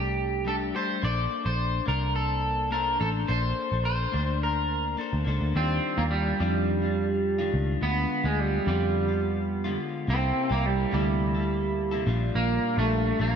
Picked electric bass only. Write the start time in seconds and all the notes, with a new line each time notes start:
Already playing: C2
1.03 A#1
1.46 A#1
1.88 C2
3.01 A1
3.29 A#1
3.72 A#1
4.14 D2
5.13 D2
5.27 C#2
5.41 D2
5.55 D#2
5.98 D#2
6.40 F2
7.54 C#2
7.82 D2
8.24 D2
8.67 F2
10.08 C2
10.51 C2
10.93 D2
12.07 A#1
12.35 A#1
12.78 A#1
13.20 A#1